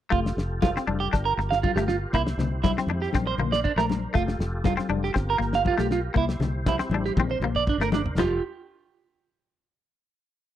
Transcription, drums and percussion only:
0.12 kick, muted conga
0.26 snare
0.38 snare
0.62 kick, snare, muted conga, high conga
0.77 snare
0.88 high conga
1.13 kick, snare, muted conga
1.37 snare, muted conga
1.52 snare
1.63 kick, high conga
1.77 snare
1.88 snare
2.14 kick, snare, muted conga
2.27 snare
2.39 snare, low conga
2.64 kick, snare, muted conga, high conga
2.78 snare
2.88 high conga
3.03 snare
3.13 kick, snare, muted conga, high conga
3.39 muted conga, low conga
3.53 snare
3.65 kick
3.78 snare
3.89 snare, high conga
4.14 kick, snare, muted conga
4.28 snare
4.40 snare
4.64 kick, snare, muted conga, high conga
4.79 snare
4.89 high conga
5.04 snare
5.15 kick, snare, muted conga
5.40 snare, muted conga
5.53 snare
5.65 kick, high conga
5.78 snare
5.91 snare
6.16 kick, muted conga
6.29 snare
6.40 snare, low conga
6.66 kick, snare, muted conga, high conga
6.79 snare
6.91 high conga
7.05 snare
7.17 kick, high tom, muted conga, high conga
7.30 high tom
7.42 mid tom, muted conga, low conga
7.55 kick
7.67 kick, mid tom
7.81 snare
7.92 snare, high conga
8.06 floor tom
8.18 snare, floor tom, china, muted conga

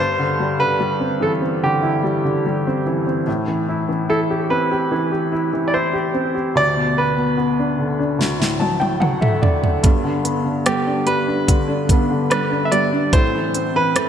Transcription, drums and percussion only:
8.21 snare
8.42 snare
8.61 high tom
8.81 high tom
9.02 mid tom
9.22 mid tom
9.43 floor tom
9.64 floor tom
9.84 kick, closed hi-hat
10.25 closed hi-hat
10.66 cross-stick, closed hi-hat
10.88 cross-stick
11.07 closed hi-hat
11.48 kick, closed hi-hat
11.89 kick, closed hi-hat
12.31 cross-stick, closed hi-hat
12.72 closed hi-hat
13.13 kick, closed hi-hat
13.54 closed hi-hat
13.96 cross-stick, closed hi-hat

